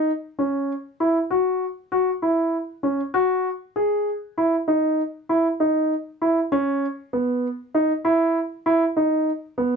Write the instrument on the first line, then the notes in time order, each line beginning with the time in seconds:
grand piano
0.39 C#4
1.00 E4
1.31 F#4
1.92 F#4
2.22 E4
2.83 C#4
3.14 F#4
3.76 G#4
4.38 E4
4.68 D#4
5.29 E4
5.60 D#4
6.22 E4
6.52 C#4
7.13 B3
7.75 D#4
8.05 E4
8.66 E4
8.97 D#4
9.58 B3